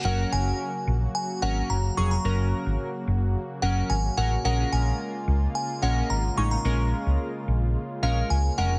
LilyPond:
<<
  \new Staff \with { instrumentName = "Synth bell" } { \time 4/4 \key fis \major \tempo 4 = 109 fis''8 gis''4. gis''8 fis''8 ais''8 cis'''16 ais''16~ | ais''2~ ais''8 fis''8 gis''8 fis''8 | fis''8 gis''4. gis''8 fis''8 ais''8 cis'''16 ais''16~ | ais''2~ ais''8 eis''8 gis''8 fis''8 | }
  \new Staff \with { instrumentName = "Synth keys" } { \time 4/4 \key fis \major <fis cis' ais'>4 r4. <fis cis' ais'>8 r8 <fis cis' gis'>8 | <fis cis' ais'>4 r4. <fis cis' ais'>8 r8 <fis cis' ais'>8 | <gis cis' ais'>4 r4. <gis cis' ais'>8 r8 <gis cis' dis'>8 | <gis cis' ais'>4 r4. <gis cis' ais'>8 r8 <gis cis' ais'>8 | }
  \new Staff \with { instrumentName = "Analog synth pad" } { \time 4/4 \key fis \major << { <fis ais fis'>1~ | <fis ais fis'>1 | <gis ais eis'>1~ | <gis ais eis'>1 | } \\ { cis1~ | cis1~ | cis1~ | cis1 | } >> }
  \new Staff \with { instrumentName = "Fingered electric bass" } { \clef bass \time 4/4 \key fis \major fis,,8 fis,,8 r8 ais,,8 r8 gis,,8 fis,,8 eis,,8 | fis,,8. gis,,16 r8 fis,,8. r16 fis,,8 gis,,8 a,,8 | ais,,8 ais,,8 r8 cis,8 r8 ais,,8 gis,,8 a,,8 | ais,,8. cis,16 r8 ais,,8. r16 ais,,8 cis,8 eis,,8 | }
>>